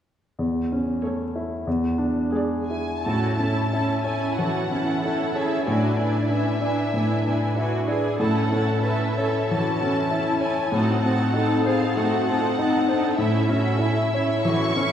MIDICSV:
0, 0, Header, 1, 6, 480
1, 0, Start_track
1, 0, Key_signature, 3, "major"
1, 0, Tempo, 641711
1, 302, Time_signature, 4, 2, 24, 8
1, 1736, Tempo, 723764
1, 2216, Tempo, 660066
1, 3656, Tempo, 633580
1, 6056, Tempo, 652174
1, 7016, Tempo, 614125
1, 10376, Tempo, 641026
1, 11218, End_track
2, 0, Start_track
2, 0, Title_t, "Violin section"
2, 0, Program_c, 0, 48
2, 1970, Note_on_c, 0, 80, 54
2, 2194, Note_off_c, 0, 80, 0
2, 2198, Note_on_c, 0, 81, 53
2, 2925, Note_on_c, 0, 80, 53
2, 2933, Note_off_c, 0, 81, 0
2, 3164, Note_on_c, 0, 78, 54
2, 3168, Note_off_c, 0, 80, 0
2, 3891, Note_off_c, 0, 78, 0
2, 3893, Note_on_c, 0, 76, 46
2, 4136, Note_off_c, 0, 76, 0
2, 4138, Note_on_c, 0, 74, 45
2, 4609, Note_off_c, 0, 74, 0
2, 4629, Note_on_c, 0, 76, 54
2, 5588, Note_off_c, 0, 76, 0
2, 6060, Note_on_c, 0, 78, 51
2, 6499, Note_off_c, 0, 78, 0
2, 6530, Note_on_c, 0, 76, 53
2, 7015, Note_on_c, 0, 81, 64
2, 7019, Note_off_c, 0, 76, 0
2, 7722, Note_on_c, 0, 80, 54
2, 7734, Note_off_c, 0, 81, 0
2, 7974, Note_off_c, 0, 80, 0
2, 7985, Note_on_c, 0, 78, 53
2, 8705, Note_on_c, 0, 77, 57
2, 8709, Note_off_c, 0, 78, 0
2, 8942, Note_off_c, 0, 77, 0
2, 8947, Note_on_c, 0, 78, 66
2, 9892, Note_on_c, 0, 76, 68
2, 9898, Note_off_c, 0, 78, 0
2, 10852, Note_off_c, 0, 76, 0
2, 10861, Note_on_c, 0, 85, 79
2, 11218, Note_off_c, 0, 85, 0
2, 11218, End_track
3, 0, Start_track
3, 0, Title_t, "Violin section"
3, 0, Program_c, 1, 48
3, 2217, Note_on_c, 1, 69, 37
3, 2220, Note_on_c, 1, 81, 36
3, 2446, Note_off_c, 1, 81, 0
3, 2450, Note_off_c, 1, 69, 0
3, 2454, Note_on_c, 1, 81, 34
3, 2458, Note_on_c, 1, 69, 34
3, 2689, Note_off_c, 1, 69, 0
3, 2691, Note_off_c, 1, 81, 0
3, 2697, Note_on_c, 1, 69, 35
3, 2699, Note_on_c, 1, 81, 32
3, 2932, Note_off_c, 1, 69, 0
3, 2933, Note_off_c, 1, 81, 0
3, 2941, Note_on_c, 1, 69, 33
3, 2942, Note_on_c, 1, 81, 31
3, 3172, Note_off_c, 1, 81, 0
3, 3174, Note_off_c, 1, 69, 0
3, 3180, Note_on_c, 1, 81, 34
3, 3182, Note_on_c, 1, 69, 35
3, 3410, Note_off_c, 1, 69, 0
3, 3413, Note_off_c, 1, 81, 0
3, 3419, Note_on_c, 1, 69, 33
3, 3424, Note_on_c, 1, 81, 32
3, 3643, Note_off_c, 1, 81, 0
3, 3647, Note_off_c, 1, 69, 0
3, 3651, Note_on_c, 1, 81, 31
3, 3655, Note_on_c, 1, 69, 32
3, 3882, Note_off_c, 1, 69, 0
3, 3886, Note_off_c, 1, 81, 0
3, 3891, Note_on_c, 1, 69, 31
3, 3895, Note_on_c, 1, 81, 37
3, 4128, Note_on_c, 1, 71, 36
3, 4130, Note_off_c, 1, 69, 0
3, 4132, Note_off_c, 1, 81, 0
3, 4134, Note_on_c, 1, 80, 37
3, 4362, Note_off_c, 1, 80, 0
3, 4367, Note_off_c, 1, 71, 0
3, 4371, Note_on_c, 1, 80, 36
3, 4375, Note_on_c, 1, 71, 35
3, 4596, Note_off_c, 1, 71, 0
3, 4601, Note_off_c, 1, 80, 0
3, 4605, Note_on_c, 1, 71, 36
3, 4610, Note_on_c, 1, 80, 36
3, 4843, Note_off_c, 1, 80, 0
3, 4844, Note_off_c, 1, 71, 0
3, 4852, Note_on_c, 1, 80, 31
3, 4853, Note_on_c, 1, 71, 33
3, 5092, Note_off_c, 1, 71, 0
3, 5095, Note_off_c, 1, 80, 0
3, 5102, Note_on_c, 1, 71, 37
3, 5106, Note_on_c, 1, 80, 38
3, 5340, Note_off_c, 1, 71, 0
3, 5342, Note_off_c, 1, 80, 0
3, 5348, Note_on_c, 1, 71, 33
3, 5350, Note_on_c, 1, 80, 33
3, 5570, Note_off_c, 1, 80, 0
3, 5574, Note_off_c, 1, 71, 0
3, 5579, Note_on_c, 1, 80, 33
3, 5583, Note_on_c, 1, 71, 36
3, 5805, Note_off_c, 1, 80, 0
3, 5809, Note_off_c, 1, 71, 0
3, 5814, Note_on_c, 1, 80, 35
3, 5818, Note_on_c, 1, 71, 37
3, 6049, Note_off_c, 1, 80, 0
3, 6051, Note_off_c, 1, 71, 0
3, 6054, Note_on_c, 1, 81, 37
3, 6058, Note_on_c, 1, 69, 37
3, 6278, Note_off_c, 1, 81, 0
3, 6281, Note_off_c, 1, 69, 0
3, 6287, Note_on_c, 1, 81, 39
3, 6290, Note_on_c, 1, 69, 39
3, 6518, Note_off_c, 1, 69, 0
3, 6520, Note_off_c, 1, 81, 0
3, 6526, Note_on_c, 1, 69, 40
3, 6530, Note_on_c, 1, 81, 35
3, 6750, Note_off_c, 1, 81, 0
3, 6756, Note_off_c, 1, 69, 0
3, 6759, Note_on_c, 1, 81, 34
3, 6765, Note_on_c, 1, 69, 33
3, 6990, Note_off_c, 1, 81, 0
3, 6991, Note_off_c, 1, 69, 0
3, 6999, Note_on_c, 1, 81, 42
3, 7000, Note_on_c, 1, 69, 37
3, 7239, Note_off_c, 1, 81, 0
3, 7240, Note_off_c, 1, 69, 0
3, 7249, Note_on_c, 1, 81, 39
3, 7250, Note_on_c, 1, 69, 36
3, 7478, Note_off_c, 1, 69, 0
3, 7479, Note_off_c, 1, 81, 0
3, 7488, Note_on_c, 1, 69, 38
3, 7488, Note_on_c, 1, 81, 37
3, 7715, Note_off_c, 1, 81, 0
3, 7716, Note_off_c, 1, 69, 0
3, 7724, Note_on_c, 1, 81, 39
3, 7726, Note_on_c, 1, 69, 42
3, 7960, Note_off_c, 1, 69, 0
3, 7965, Note_off_c, 1, 81, 0
3, 7969, Note_on_c, 1, 69, 41
3, 7975, Note_on_c, 1, 81, 43
3, 8199, Note_off_c, 1, 81, 0
3, 8201, Note_off_c, 1, 69, 0
3, 8208, Note_on_c, 1, 81, 44
3, 8210, Note_on_c, 1, 69, 41
3, 8453, Note_off_c, 1, 81, 0
3, 8454, Note_off_c, 1, 69, 0
3, 8465, Note_on_c, 1, 81, 42
3, 8467, Note_on_c, 1, 69, 41
3, 8700, Note_off_c, 1, 69, 0
3, 8701, Note_off_c, 1, 81, 0
3, 8709, Note_on_c, 1, 81, 39
3, 8710, Note_on_c, 1, 69, 34
3, 8939, Note_off_c, 1, 81, 0
3, 8941, Note_off_c, 1, 69, 0
3, 8948, Note_on_c, 1, 81, 45
3, 8950, Note_on_c, 1, 69, 47
3, 9178, Note_off_c, 1, 69, 0
3, 9178, Note_off_c, 1, 81, 0
3, 9187, Note_on_c, 1, 69, 39
3, 9188, Note_on_c, 1, 81, 40
3, 9423, Note_off_c, 1, 69, 0
3, 9423, Note_off_c, 1, 81, 0
3, 9438, Note_on_c, 1, 81, 43
3, 9441, Note_on_c, 1, 69, 41
3, 9664, Note_off_c, 1, 81, 0
3, 9666, Note_off_c, 1, 69, 0
3, 9673, Note_on_c, 1, 81, 42
3, 9677, Note_on_c, 1, 69, 43
3, 9897, Note_off_c, 1, 69, 0
3, 9899, Note_off_c, 1, 81, 0
3, 9906, Note_on_c, 1, 69, 43
3, 9906, Note_on_c, 1, 76, 47
3, 10129, Note_off_c, 1, 76, 0
3, 10131, Note_off_c, 1, 69, 0
3, 10138, Note_on_c, 1, 76, 47
3, 10140, Note_on_c, 1, 69, 43
3, 10363, Note_off_c, 1, 69, 0
3, 10364, Note_off_c, 1, 76, 0
3, 10373, Note_on_c, 1, 69, 41
3, 10373, Note_on_c, 1, 76, 45
3, 10617, Note_off_c, 1, 69, 0
3, 10617, Note_off_c, 1, 76, 0
3, 10626, Note_on_c, 1, 69, 42
3, 10627, Note_on_c, 1, 76, 38
3, 10870, Note_off_c, 1, 69, 0
3, 10870, Note_off_c, 1, 76, 0
3, 10879, Note_on_c, 1, 69, 44
3, 10880, Note_on_c, 1, 76, 47
3, 11099, Note_off_c, 1, 69, 0
3, 11102, Note_off_c, 1, 76, 0
3, 11108, Note_on_c, 1, 69, 45
3, 11111, Note_on_c, 1, 76, 43
3, 11218, Note_off_c, 1, 69, 0
3, 11218, Note_off_c, 1, 76, 0
3, 11218, End_track
4, 0, Start_track
4, 0, Title_t, "Cello section"
4, 0, Program_c, 2, 48
4, 2221, Note_on_c, 2, 66, 46
4, 2443, Note_off_c, 2, 66, 0
4, 2459, Note_on_c, 2, 64, 36
4, 2702, Note_off_c, 2, 64, 0
4, 2703, Note_on_c, 2, 61, 35
4, 2944, Note_off_c, 2, 61, 0
4, 2950, Note_on_c, 2, 64, 35
4, 3180, Note_off_c, 2, 64, 0
4, 3186, Note_on_c, 2, 66, 34
4, 3421, Note_off_c, 2, 66, 0
4, 3421, Note_on_c, 2, 64, 37
4, 3655, Note_on_c, 2, 69, 44
4, 3657, Note_off_c, 2, 64, 0
4, 3899, Note_off_c, 2, 69, 0
4, 3902, Note_on_c, 2, 68, 40
4, 4136, Note_on_c, 2, 66, 45
4, 4140, Note_off_c, 2, 68, 0
4, 4376, Note_off_c, 2, 66, 0
4, 4377, Note_on_c, 2, 64, 38
4, 4616, Note_on_c, 2, 61, 42
4, 4619, Note_off_c, 2, 64, 0
4, 4860, Note_off_c, 2, 61, 0
4, 4872, Note_on_c, 2, 62, 34
4, 5107, Note_on_c, 2, 64, 37
4, 5111, Note_off_c, 2, 62, 0
4, 5575, Note_off_c, 2, 64, 0
4, 5590, Note_on_c, 2, 66, 43
4, 5817, Note_off_c, 2, 66, 0
4, 5825, Note_on_c, 2, 68, 45
4, 6054, Note_on_c, 2, 69, 51
4, 6059, Note_off_c, 2, 68, 0
4, 6526, Note_off_c, 2, 69, 0
4, 6527, Note_on_c, 2, 71, 46
4, 6773, Note_off_c, 2, 71, 0
4, 6776, Note_on_c, 2, 69, 40
4, 7019, Note_off_c, 2, 69, 0
4, 7019, Note_on_c, 2, 66, 41
4, 7495, Note_off_c, 2, 66, 0
4, 7499, Note_on_c, 2, 64, 39
4, 7983, Note_off_c, 2, 64, 0
4, 7986, Note_on_c, 2, 66, 51
4, 8460, Note_off_c, 2, 66, 0
4, 8463, Note_on_c, 2, 69, 46
4, 8700, Note_on_c, 2, 68, 45
4, 8705, Note_off_c, 2, 69, 0
4, 8944, Note_off_c, 2, 68, 0
4, 8950, Note_on_c, 2, 66, 42
4, 9190, Note_off_c, 2, 66, 0
4, 9194, Note_on_c, 2, 65, 43
4, 9427, Note_on_c, 2, 63, 47
4, 9431, Note_off_c, 2, 65, 0
4, 9659, Note_off_c, 2, 63, 0
4, 9663, Note_on_c, 2, 62, 48
4, 9898, Note_off_c, 2, 62, 0
4, 9898, Note_on_c, 2, 64, 49
4, 10135, Note_off_c, 2, 64, 0
4, 10139, Note_on_c, 2, 66, 44
4, 10378, Note_on_c, 2, 64, 48
4, 10380, Note_off_c, 2, 66, 0
4, 10874, Note_off_c, 2, 64, 0
4, 10876, Note_on_c, 2, 66, 43
4, 11104, Note_on_c, 2, 64, 46
4, 11108, Note_off_c, 2, 66, 0
4, 11218, Note_off_c, 2, 64, 0
4, 11218, End_track
5, 0, Start_track
5, 0, Title_t, "Viola section"
5, 0, Program_c, 3, 48
5, 781, Note_on_c, 3, 73, 39
5, 783, Note_on_c, 3, 57, 35
5, 1125, Note_off_c, 3, 73, 0
5, 1126, Note_off_c, 3, 57, 0
5, 1731, Note_on_c, 3, 56, 37
5, 1739, Note_on_c, 3, 74, 42
5, 2097, Note_off_c, 3, 56, 0
5, 2101, Note_off_c, 3, 74, 0
5, 2214, Note_on_c, 3, 61, 37
5, 2215, Note_on_c, 3, 64, 34
5, 2442, Note_off_c, 3, 64, 0
5, 2444, Note_off_c, 3, 61, 0
5, 2450, Note_on_c, 3, 64, 34
5, 2453, Note_on_c, 3, 61, 34
5, 2689, Note_off_c, 3, 61, 0
5, 2689, Note_off_c, 3, 64, 0
5, 2697, Note_on_c, 3, 64, 31
5, 2698, Note_on_c, 3, 61, 35
5, 2930, Note_off_c, 3, 64, 0
5, 2932, Note_off_c, 3, 61, 0
5, 2939, Note_on_c, 3, 64, 32
5, 2941, Note_on_c, 3, 61, 34
5, 3175, Note_off_c, 3, 64, 0
5, 3176, Note_off_c, 3, 61, 0
5, 3189, Note_on_c, 3, 61, 31
5, 3189, Note_on_c, 3, 64, 33
5, 3408, Note_off_c, 3, 61, 0
5, 3408, Note_off_c, 3, 64, 0
5, 3416, Note_on_c, 3, 61, 28
5, 3416, Note_on_c, 3, 64, 28
5, 3650, Note_off_c, 3, 61, 0
5, 3650, Note_off_c, 3, 64, 0
5, 3658, Note_on_c, 3, 61, 35
5, 3659, Note_on_c, 3, 64, 32
5, 3896, Note_off_c, 3, 61, 0
5, 3896, Note_off_c, 3, 64, 0
5, 3906, Note_on_c, 3, 61, 35
5, 3909, Note_on_c, 3, 64, 33
5, 4134, Note_off_c, 3, 64, 0
5, 4137, Note_off_c, 3, 61, 0
5, 4143, Note_on_c, 3, 64, 38
5, 4145, Note_on_c, 3, 62, 41
5, 4375, Note_off_c, 3, 64, 0
5, 4376, Note_off_c, 3, 62, 0
5, 4386, Note_on_c, 3, 62, 34
5, 4389, Note_on_c, 3, 64, 33
5, 4602, Note_off_c, 3, 64, 0
5, 4603, Note_off_c, 3, 62, 0
5, 4611, Note_on_c, 3, 64, 34
5, 4612, Note_on_c, 3, 62, 32
5, 4853, Note_off_c, 3, 62, 0
5, 4853, Note_off_c, 3, 64, 0
5, 4867, Note_on_c, 3, 64, 36
5, 4868, Note_on_c, 3, 62, 33
5, 5097, Note_off_c, 3, 62, 0
5, 5103, Note_off_c, 3, 64, 0
5, 5106, Note_on_c, 3, 62, 33
5, 5111, Note_on_c, 3, 64, 34
5, 5342, Note_off_c, 3, 62, 0
5, 5342, Note_off_c, 3, 64, 0
5, 5350, Note_on_c, 3, 62, 32
5, 5351, Note_on_c, 3, 64, 31
5, 5576, Note_off_c, 3, 64, 0
5, 5580, Note_off_c, 3, 62, 0
5, 5585, Note_on_c, 3, 64, 37
5, 5589, Note_on_c, 3, 62, 34
5, 5797, Note_off_c, 3, 62, 0
5, 5801, Note_off_c, 3, 64, 0
5, 5806, Note_on_c, 3, 62, 31
5, 5810, Note_on_c, 3, 64, 34
5, 6045, Note_off_c, 3, 62, 0
5, 6047, Note_off_c, 3, 64, 0
5, 6056, Note_on_c, 3, 64, 46
5, 6058, Note_on_c, 3, 61, 44
5, 6269, Note_off_c, 3, 61, 0
5, 6273, Note_off_c, 3, 64, 0
5, 6278, Note_on_c, 3, 61, 38
5, 6282, Note_on_c, 3, 64, 38
5, 6516, Note_off_c, 3, 61, 0
5, 6518, Note_off_c, 3, 64, 0
5, 6530, Note_on_c, 3, 64, 35
5, 6534, Note_on_c, 3, 61, 39
5, 6759, Note_off_c, 3, 61, 0
5, 6767, Note_off_c, 3, 64, 0
5, 6768, Note_on_c, 3, 61, 38
5, 6776, Note_on_c, 3, 64, 35
5, 7003, Note_off_c, 3, 61, 0
5, 7004, Note_off_c, 3, 64, 0
5, 7012, Note_on_c, 3, 61, 39
5, 7012, Note_on_c, 3, 64, 40
5, 7248, Note_off_c, 3, 64, 0
5, 7250, Note_off_c, 3, 61, 0
5, 7258, Note_on_c, 3, 61, 35
5, 7258, Note_on_c, 3, 64, 36
5, 7478, Note_off_c, 3, 61, 0
5, 7481, Note_off_c, 3, 64, 0
5, 7487, Note_on_c, 3, 61, 42
5, 7491, Note_on_c, 3, 64, 43
5, 7727, Note_off_c, 3, 61, 0
5, 7729, Note_off_c, 3, 64, 0
5, 7746, Note_on_c, 3, 61, 36
5, 7746, Note_on_c, 3, 64, 35
5, 7981, Note_off_c, 3, 61, 0
5, 7981, Note_off_c, 3, 64, 0
5, 7981, Note_on_c, 3, 60, 45
5, 7981, Note_on_c, 3, 63, 48
5, 8216, Note_off_c, 3, 60, 0
5, 8220, Note_off_c, 3, 63, 0
5, 8225, Note_on_c, 3, 60, 36
5, 8229, Note_on_c, 3, 63, 40
5, 8461, Note_off_c, 3, 63, 0
5, 8462, Note_off_c, 3, 60, 0
5, 8470, Note_on_c, 3, 63, 43
5, 8475, Note_on_c, 3, 60, 40
5, 8695, Note_off_c, 3, 63, 0
5, 8698, Note_off_c, 3, 60, 0
5, 8704, Note_on_c, 3, 63, 40
5, 8707, Note_on_c, 3, 60, 40
5, 8941, Note_off_c, 3, 60, 0
5, 8941, Note_off_c, 3, 63, 0
5, 8950, Note_on_c, 3, 60, 45
5, 8957, Note_on_c, 3, 63, 42
5, 9186, Note_off_c, 3, 60, 0
5, 9189, Note_off_c, 3, 63, 0
5, 9197, Note_on_c, 3, 63, 36
5, 9199, Note_on_c, 3, 60, 35
5, 9428, Note_off_c, 3, 63, 0
5, 9429, Note_off_c, 3, 60, 0
5, 9439, Note_on_c, 3, 60, 43
5, 9446, Note_on_c, 3, 63, 42
5, 9662, Note_off_c, 3, 63, 0
5, 9665, Note_off_c, 3, 60, 0
5, 9671, Note_on_c, 3, 63, 42
5, 9674, Note_on_c, 3, 60, 38
5, 9898, Note_off_c, 3, 63, 0
5, 9899, Note_off_c, 3, 60, 0
5, 9903, Note_on_c, 3, 61, 48
5, 9908, Note_on_c, 3, 64, 46
5, 10126, Note_off_c, 3, 64, 0
5, 10133, Note_off_c, 3, 61, 0
5, 10136, Note_on_c, 3, 64, 42
5, 10142, Note_on_c, 3, 61, 44
5, 10373, Note_off_c, 3, 61, 0
5, 10374, Note_off_c, 3, 64, 0
5, 10382, Note_on_c, 3, 61, 43
5, 10382, Note_on_c, 3, 64, 41
5, 10608, Note_off_c, 3, 61, 0
5, 10610, Note_off_c, 3, 64, 0
5, 10617, Note_on_c, 3, 61, 43
5, 10619, Note_on_c, 3, 64, 44
5, 10861, Note_off_c, 3, 61, 0
5, 10862, Note_off_c, 3, 64, 0
5, 10870, Note_on_c, 3, 61, 45
5, 10871, Note_on_c, 3, 64, 47
5, 11096, Note_off_c, 3, 61, 0
5, 11096, Note_off_c, 3, 64, 0
5, 11105, Note_on_c, 3, 61, 41
5, 11105, Note_on_c, 3, 64, 37
5, 11218, Note_off_c, 3, 61, 0
5, 11218, Note_off_c, 3, 64, 0
5, 11218, End_track
6, 0, Start_track
6, 0, Title_t, "Grand piano"
6, 0, Program_c, 4, 0
6, 289, Note_on_c, 4, 40, 37
6, 446, Control_c, 4, 64, 127
6, 540, Note_on_c, 4, 61, 29
6, 772, Note_on_c, 4, 69, 28
6, 920, Note_off_c, 4, 61, 0
6, 1014, Note_on_c, 4, 64, 35
6, 1146, Note_off_c, 4, 69, 0
6, 1209, Note_off_c, 4, 40, 0
6, 1244, Note_off_c, 4, 64, 0
6, 1250, Note_on_c, 4, 40, 43
6, 1256, Control_c, 4, 64, 0
6, 1360, Control_c, 4, 64, 127
6, 1483, Note_on_c, 4, 62, 39
6, 1738, Note_on_c, 4, 68, 37
6, 1880, Note_off_c, 4, 62, 0
6, 1991, Note_on_c, 4, 64, 34
6, 2127, Note_off_c, 4, 68, 0
6, 2192, Note_off_c, 4, 40, 0
6, 2222, Note_off_c, 4, 64, 0
6, 2227, Note_on_c, 4, 45, 41
6, 2230, Control_c, 4, 64, 0
6, 2353, Control_c, 4, 64, 127
6, 2470, Note_on_c, 4, 61, 33
6, 2716, Note_on_c, 4, 64, 31
6, 2853, Note_off_c, 4, 61, 0
6, 2944, Note_on_c, 4, 73, 36
6, 3094, Note_off_c, 4, 64, 0
6, 3159, Note_off_c, 4, 45, 0
6, 3191, Note_on_c, 4, 52, 33
6, 3324, Note_off_c, 4, 73, 0
6, 3430, Note_on_c, 4, 61, 32
6, 3566, Note_off_c, 4, 52, 0
6, 3679, Note_on_c, 4, 64, 40
6, 3808, Note_off_c, 4, 61, 0
6, 3905, Note_on_c, 4, 73, 36
6, 4055, Note_off_c, 4, 64, 0
6, 4142, Note_off_c, 4, 73, 0
6, 4149, Note_on_c, 4, 45, 47
6, 4153, Control_c, 4, 64, 0
6, 4284, Control_c, 4, 64, 127
6, 4368, Note_on_c, 4, 62, 32
6, 4611, Note_on_c, 4, 64, 30
6, 4759, Note_off_c, 4, 62, 0
6, 4854, Note_on_c, 4, 74, 35
6, 5004, Note_off_c, 4, 64, 0
6, 5082, Note_off_c, 4, 45, 0
6, 5104, Note_on_c, 4, 45, 38
6, 5247, Note_off_c, 4, 74, 0
6, 5348, Note_on_c, 4, 62, 32
6, 5578, Note_on_c, 4, 64, 41
6, 5725, Note_off_c, 4, 62, 0
6, 5817, Note_on_c, 4, 74, 41
6, 5958, Note_off_c, 4, 64, 0
6, 6027, Note_off_c, 4, 45, 0
6, 6055, Note_off_c, 4, 74, 0
6, 6057, Note_on_c, 4, 45, 48
6, 6069, Control_c, 4, 64, 0
6, 6169, Control_c, 4, 64, 127
6, 6296, Note_on_c, 4, 61, 34
6, 6522, Note_on_c, 4, 64, 33
6, 6675, Note_off_c, 4, 61, 0
6, 6781, Note_on_c, 4, 73, 40
6, 6919, Note_off_c, 4, 64, 0
6, 6988, Note_off_c, 4, 45, 0
6, 7028, Note_on_c, 4, 52, 37
6, 7167, Note_off_c, 4, 73, 0
6, 7270, Note_on_c, 4, 61, 34
6, 7404, Note_off_c, 4, 52, 0
6, 7496, Note_on_c, 4, 64, 42
6, 7644, Note_off_c, 4, 61, 0
6, 7727, Note_on_c, 4, 73, 41
6, 7883, Note_off_c, 4, 64, 0
6, 7972, Note_on_c, 4, 45, 50
6, 7976, Note_off_c, 4, 73, 0
6, 7996, Control_c, 4, 64, 0
6, 8135, Control_c, 4, 64, 127
6, 8225, Note_on_c, 4, 60, 41
6, 8452, Note_on_c, 4, 63, 40
6, 8611, Note_off_c, 4, 60, 0
6, 8700, Note_on_c, 4, 72, 43
6, 8844, Note_off_c, 4, 63, 0
6, 8914, Note_off_c, 4, 45, 0
6, 8947, Note_on_c, 4, 57, 40
6, 9089, Note_off_c, 4, 72, 0
6, 9198, Note_on_c, 4, 60, 42
6, 9333, Note_off_c, 4, 57, 0
6, 9428, Note_on_c, 4, 63, 50
6, 9575, Note_off_c, 4, 60, 0
6, 9661, Note_on_c, 4, 72, 46
6, 9805, Note_off_c, 4, 63, 0
6, 9897, Note_off_c, 4, 72, 0
6, 9897, Note_on_c, 4, 45, 49
6, 9913, Control_c, 4, 64, 0
6, 10038, Control_c, 4, 64, 127
6, 10139, Note_on_c, 4, 61, 38
6, 10370, Note_on_c, 4, 64, 41
6, 10525, Note_off_c, 4, 61, 0
6, 10633, Note_on_c, 4, 73, 41
6, 10772, Note_off_c, 4, 64, 0
6, 10844, Note_off_c, 4, 45, 0
6, 10865, Note_on_c, 4, 52, 39
6, 11020, Note_off_c, 4, 73, 0
6, 11101, Note_on_c, 4, 61, 44
6, 11218, Note_off_c, 4, 52, 0
6, 11218, Note_off_c, 4, 61, 0
6, 11218, End_track
0, 0, End_of_file